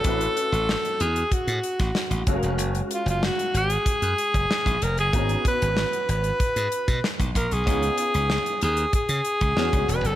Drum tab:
HH |xxxx-xxxxxxx-xxx|xxxx-xxxxxxx-xxx|xxxx-xxxxxxx-xxx|xxxx-xxxxxxx-xxx|
SD |----o------oo---|----o-------o---|----o------oo---|----o-------o---|
BD |o-------o--o--o-|--------o--o-o--|o-o-----o--o-oo-|o-------o--o-o--|